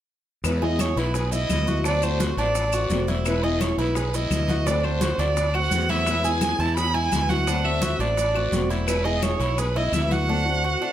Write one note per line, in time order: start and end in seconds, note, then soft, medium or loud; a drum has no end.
0.44 0.93 E2 medium
0.44 0.61 B2 medium
0.44 0.61 E3 medium
0.44 0.62 G#3 medium
0.44 0.61 B3 medium
0.44 0.60 E4 medium
0.44 0.65 B4 medium
0.44 high bongo medium
0.44 high conga soft
0.44 long guiro medium
0.44 claves medium
0.44 maracas medium
0.61 0.97 E3 medium
0.61 0.97 G#3 medium
0.61 0.96 B3 medium
0.61 0.95 E4 medium
0.61 0.96 G#4 medium
0.61 0.82 D#5 medium
0.61 high bongo soft
0.61 high conga soft
0.79 1.00 C#5 medium
0.79 high bongo medium
0.79 high conga medium
0.79 short guiro medium
0.79 claves medium
0.79 maracas medium
0.96 1.45 B1 medium
0.96 1.14 G#3 soft
0.96 1.14 B3 soft
0.96 1.13 E4 soft
0.96 1.14 E4 medium
0.96 1.33 B4 medium
0.96 high conga soft
0.96 short guiro medium
0.96 maracas soft
1.14 1.32 G#4 medium
1.14 muted nylon-string guitar stroke medium
1.14 high bongo medium
1.14 high conga soft
1.14 long guiro medium
1.14 maracas medium
1.32 1.49 G#3 soft
1.32 1.49 B3 soft
1.32 1.49 E4 soft
1.32 1.66 E4 medium
1.32 1.82 D#5 medium
1.32 high bongo soft
1.32 high conga soft
1.32 maracas medium
1.49 2.32 D2 medium
1.49 1.66 B2 medium
1.49 1.67 E3 medium
1.49 1.67 G#3 medium
1.49 1.67 B3 medium
1.49 1.66 E4 medium
1.49 high bongo soft
1.49 low bongo medium
1.49 high conga medium
1.49 short guiro medium
1.49 claves medium
1.49 maracas medium
1.67 1.85 G#3 soft
1.67 1.85 B3 soft
1.67 1.84 E4 soft
1.67 1.84 F#4 medium
1.67 high bongo soft
1.67 high conga medium
1.67 short guiro medium
1.67 maracas soft
1.84 2.02 D3 medium
1.84 2.02 A3 medium
1.84 2.02 C4 medium
1.84 2.19 D4 medium
1.84 2.02 F#4 medium
1.84 2.05 D5 medium
1.84 high bongo medium
1.84 high conga soft
1.84 long guiro medium
1.84 maracas medium
2.02 2.38 A3 soft
2.02 2.38 C4 medium
2.02 2.37 F#4 medium
2.02 2.37 C5 medium
2.02 high bongo soft
2.02 high conga soft
2.02 claves medium
2.02 maracas medium
2.20 2.37 F#4 medium
2.20 high bongo medium
2.20 high conga medium
2.20 short guiro medium
2.20 maracas medium
2.37 2.86 A1 medium
2.37 2.55 A3 soft
2.37 2.56 C4 soft
2.37 2.72 D4 medium
2.37 2.55 F#4 medium
2.37 3.04 D5 medium
2.37 high conga soft
2.37 short guiro medium
2.37 maracas soft
2.55 muted nylon-string guitar stroke medium
2.55 high bongo medium
2.55 high conga soft
2.55 long guiro medium
2.55 maracas medium
2.73 2.91 A3 soft
2.73 2.90 C4 soft
2.73 3.07 F#4 medium
2.73 2.90 F#4 soft
2.73 high bongo soft
2.73 high conga soft
2.73 claves medium
2.73 maracas medium
2.90 3.72 E1 medium
2.90 3.08 D3 medium
2.90 3.08 A3 medium
2.90 3.08 C4 medium
2.90 3.08 F#4 medium
2.90 high bongo soft
2.90 low bongo medium
2.90 high conga medium
2.90 short guiro medium
2.90 maracas medium
3.08 3.26 A3 soft
3.08 3.26 C4 soft
3.08 3.42 E4 medium
3.08 3.26 F#4 soft
3.08 high bongo soft
3.08 high conga medium
3.08 short guiro medium
3.08 maracas soft
3.25 3.43 B2 medium
3.25 3.43 E3 medium
3.25 3.43 G#3 medium
3.25 3.43 B3 medium
3.25 3.42 E4 medium
3.25 3.45 B4 medium
3.25 high bongo medium
3.25 high conga soft
3.25 long guiro medium
3.25 claves medium
3.25 maracas medium
3.43 3.78 E3 medium
3.43 3.78 G#3 medium
3.43 3.78 B3 medium
3.43 3.78 E4 medium
3.43 3.77 G#4 medium
3.43 3.63 D#5 medium
3.43 high bongo soft
3.43 high conga soft
3.60 3.78 C#5 medium
3.60 high bongo medium
3.60 high conga medium
3.60 short guiro medium
3.60 claves medium
3.60 maracas medium
3.78 4.27 B1 medium
3.78 3.97 G#3 soft
3.78 3.96 B3 soft
3.78 3.95 E4 medium
3.78 3.96 E4 soft
3.78 4.17 B4 medium
3.78 high conga soft
3.78 short guiro medium
3.78 maracas soft
3.95 4.13 G#4 medium
3.95 muted nylon-string guitar stroke medium
3.95 high bongo medium
3.95 high conga soft
3.95 long guiro medium
3.95 maracas medium
4.13 4.31 G#3 soft
4.13 4.31 B3 soft
4.13 4.48 E4 medium
4.13 4.31 E4 soft
4.13 4.68 D#5 medium
4.13 high bongo soft
4.13 high conga soft
4.13 maracas medium
4.30 5.13 D2 medium
4.30 4.48 B2 medium
4.30 4.48 E3 medium
4.30 4.49 G#3 medium
4.30 4.49 B3 medium
4.30 4.48 E4 medium
4.30 high bongo soft
4.30 low bongo medium
4.30 high conga medium
4.30 short guiro medium
4.30 claves medium
4.30 maracas medium
4.47 4.67 G#3 soft
4.47 4.66 B3 soft
4.47 4.66 E4 soft
4.47 4.66 F#4 medium
4.47 high bongo soft
4.47 high conga medium
4.47 short guiro medium
4.47 maracas soft
4.66 4.83 D3 medium
4.66 4.84 A3 medium
4.66 4.84 C4 medium
4.66 5.00 D4 medium
4.66 4.83 F#4 medium
4.66 4.87 D5 medium
4.66 high bongo medium
4.66 high conga soft
4.66 long guiro medium
4.66 maracas medium
4.84 5.19 A3 soft
4.84 5.19 C4 medium
4.84 5.18 F#4 medium
4.84 5.21 C5 medium
4.84 high bongo soft
4.84 high conga soft
4.84 claves medium
5.01 5.19 F#4 medium
5.01 high bongo medium
5.01 high conga medium
5.01 short guiro medium
5.01 maracas medium
5.18 5.67 D2 medium
5.18 5.37 A3 soft
5.18 5.36 C4 soft
5.18 5.53 D4 medium
5.18 5.36 F#4 soft
5.18 5.56 D5 medium
5.18 high conga soft
5.18 short guiro medium
5.18 maracas soft
5.36 muted nylon-string guitar stroke medium
5.36 high bongo medium
5.36 high conga soft
5.36 long guiro medium
5.36 maracas medium
5.54 5.71 A3 soft
5.54 5.72 C4 soft
5.54 5.89 F#4 medium
5.54 5.72 F#4 soft
5.54 5.91 F#5 loud
5.54 high bongo soft
5.54 high conga soft
5.54 claves medium
5.71 6.53 E2 medium
5.71 5.89 D3 medium
5.71 5.89 A3 medium
5.71 5.90 C4 medium
5.71 5.90 F#4 medium
5.71 high bongo soft
5.71 low bongo medium
5.71 high conga medium
5.71 short guiro medium
5.71 maracas medium
5.89 6.07 A3 soft
5.89 6.07 C4 soft
5.89 6.24 E4 medium
5.89 6.07 F#4 medium
5.89 6.26 E5 loud
5.89 high bongo soft
5.89 high conga medium
5.89 short guiro medium
5.89 maracas soft
6.07 6.24 B2 medium
6.07 6.24 E3 medium
6.07 6.25 G#3 medium
6.07 6.24 B3 medium
6.07 6.23 E4 medium
6.07 high bongo medium
6.07 high conga soft
6.07 long guiro medium
6.07 claves medium
6.07 maracas medium
6.24 6.60 E3 medium
6.24 6.60 G#3 medium
6.24 6.59 B3 medium
6.24 6.58 E4 medium
6.24 6.58 G#4 medium
6.24 6.61 G#5 loud
6.24 high bongo soft
6.24 high conga soft
6.24 maracas medium
6.41 high bongo medium
6.41 high conga medium
6.41 short guiro medium
6.41 claves medium
6.41 maracas medium
6.59 7.08 E2 medium
6.59 6.76 G#3 soft
6.59 6.77 B3 soft
6.59 6.76 E4 soft
6.59 6.77 E4 medium
6.59 6.76 A5 medium
6.59 high conga soft
6.59 short guiro medium
6.59 maracas soft
6.76 6.94 G#4 medium
6.76 6.96 B5 loud
6.76 muted nylon-string guitar stroke medium
6.76 high bongo medium
6.76 high conga soft
6.76 long guiro medium
6.76 maracas medium
6.94 7.12 G#3 soft
6.94 7.12 B3 soft
6.94 7.11 E4 soft
6.94 7.29 E4 medium
6.94 7.31 G#5 loud
6.94 high bongo soft
6.94 high conga soft
7.12 7.94 D2 medium
7.12 7.29 B2 medium
7.12 7.29 E3 medium
7.12 7.29 G#3 medium
7.12 7.30 B3 medium
7.12 7.29 E4 medium
7.12 high bongo soft
7.12 low bongo medium
7.12 high conga medium
7.12 short guiro medium
7.12 claves medium
7.12 maracas medium
7.29 7.47 G#3 soft
7.29 7.47 B3 soft
7.29 7.47 E4 soft
7.29 7.47 F#4 medium
7.29 7.67 F#5 loud
7.29 high bongo soft
7.29 high conga medium
7.29 short guiro medium
7.29 maracas soft
7.47 7.64 D3 medium
7.47 7.64 A3 medium
7.47 7.64 C4 medium
7.47 7.82 D4 medium
7.47 7.63 F#4 medium
7.47 high bongo medium
7.47 high conga soft
7.47 long guiro medium
7.47 maracas medium
7.64 8.00 A3 medium
7.64 8.00 C4 medium
7.64 7.98 F#4 medium
7.64 8.02 E5 medium
7.64 high bongo soft
7.64 high conga soft
7.64 claves medium
7.82 8.00 F#4 medium
7.82 high bongo medium
7.82 high conga medium
7.82 short guiro medium
7.82 maracas medium
7.99 8.48 A1 medium
7.99 8.16 A3 soft
7.99 8.17 C4 soft
7.99 8.34 D4 medium
7.99 8.17 F#4 soft
7.99 8.71 D5 medium
7.99 high conga soft
7.99 short guiro medium
7.99 maracas soft
8.17 muted nylon-string guitar stroke medium
8.17 high bongo medium
8.17 high conga soft
8.17 long guiro medium
8.17 maracas medium
8.34 8.51 A3 soft
8.34 8.52 C4 soft
8.34 8.52 F#4 soft
8.34 8.70 F#4 medium
8.34 high bongo soft
8.34 high conga soft
8.34 claves medium
8.52 9.34 E1 medium
8.52 8.69 D3 medium
8.52 8.70 A3 medium
8.52 8.70 C4 medium
8.52 8.69 F#4 medium
8.52 high bongo soft
8.52 low bongo medium
8.52 high conga medium
8.52 short guiro medium
8.52 maracas medium
8.70 8.88 A3 soft
8.70 8.87 C4 soft
8.70 9.04 E4 medium
8.70 8.87 F#4 soft
8.70 high bongo soft
8.70 short guiro medium
8.70 maracas soft
8.87 9.04 B2 medium
8.87 9.05 E3 medium
8.87 9.05 G#3 medium
8.87 9.04 B3 medium
8.87 9.04 E4 medium
8.87 9.06 B4 medium
8.87 high bongo medium
8.87 high conga soft
8.87 long guiro medium
8.87 claves medium
8.87 maracas medium
9.05 9.40 E3 medium
9.05 9.40 G#3 medium
9.05 9.40 B3 medium
9.05 9.39 E4 medium
9.05 9.39 G#4 medium
9.05 9.25 D#5 medium
9.05 high bongo soft
9.05 high conga soft
9.22 9.60 C#5 medium
9.22 high bongo medium
9.22 high conga medium
9.22 short guiro medium
9.22 claves medium
9.22 maracas medium
9.39 9.89 B1 medium
9.39 9.57 G#3 soft
9.39 9.57 B3 soft
9.39 9.57 E4 soft
9.39 9.58 E4 medium
9.39 high conga soft
9.39 short guiro medium
9.39 maracas soft
9.57 9.76 G#4 medium
9.57 9.78 B4 medium
9.57 muted nylon-string guitar stroke medium
9.57 high bongo medium
9.57 high conga soft
9.57 long guiro medium
9.57 maracas medium
9.76 9.92 G#3 soft
9.76 9.93 B3 soft
9.76 9.93 E4 soft
9.76 10.10 E4 medium
9.76 9.95 D#5 medium
9.76 high bongo soft
9.76 high conga soft
9.92 10.75 D2 medium
9.92 10.10 B2 medium
9.92 10.10 E3 medium
9.92 10.10 G#3 medium
9.92 10.10 B3 medium
9.92 10.09 E4 medium
9.92 10.13 E5 medium
9.92 high bongo soft
9.92 low bongo medium
9.92 high conga medium
9.92 short guiro medium
9.92 claves medium
9.92 maracas medium
10.10 10.28 G#3 soft
10.10 10.28 B3 soft
10.10 10.27 E4 soft
10.10 10.28 F#4 medium
10.10 10.93 F#5 loud
10.10 high bongo soft
10.10 high conga medium
10.10 short guiro medium
10.10 maracas soft
10.28 10.45 D3 medium
10.28 10.45 A3 medium
10.28 10.45 C4 medium
10.28 10.63 D4 medium
10.28 10.44 F#4 medium
10.45 10.81 A3 medium
10.45 10.81 C4 medium
10.45 10.80 F#4 medium
10.64 10.81 F#4 medium
10.81 10.93 A3 soft
10.81 10.93 C4 soft
10.81 10.93 D4 medium
10.81 10.93 F#4 soft